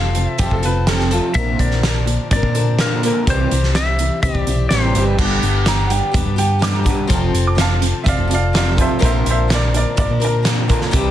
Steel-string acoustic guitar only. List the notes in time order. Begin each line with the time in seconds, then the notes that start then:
Already playing: F3 C4 F4 A4
0.38 F3 C4 F4 A4
0.62 C4 F4 A4
0.88 F3 C4 F4 A4
1.11 C4 F4 A4
1.35 A#2 D3 F3 C4 D4 A#4
1.85 C4 D4 A#4
2.32 F3 C4 D4 A#4
2.56 F3 C4 D4 A#4
2.79 F3 C4 D4 A#4
3.05 F3 C4 D4 A#4
3.27 C3 G3 C4 E4 G4
3.73 G3 C4 E4 G4
4.22 G3 C4 E4 G4
4.48 C4 E4 G4
4.71 G3 C4 E4 G4
4.95 C4 E4 G4
5.19 G2 D3 G3 B3 D4 G4
5.65 G3 B3 D4 G4
6.12 G3 B3 D4 G4
6.36 G3 B3 D4 G4
6.59 G3 B3 D4 G4
6.84 G3 B3 D4 G4
7.07 F3 C4 F4 A4
7.55 F3 C4 F4 A4
8.04 F3 C4 F4 A4
8.27 C4 F4 A4
8.53 F3 C4 F4 A4
8.77 C4 F4 A4
8.99 A#2 D3 F3 C4 D4 A#4
9.48 F3 C4 D4 A#4
9.96 F3 C4 D4 A#4
10.20 F3 C4 D4 A#4
10.43 F3 C4 D4 A#4
10.68 F3 C4 D4 A#4
10.91 C3 G3 C4 E4 G4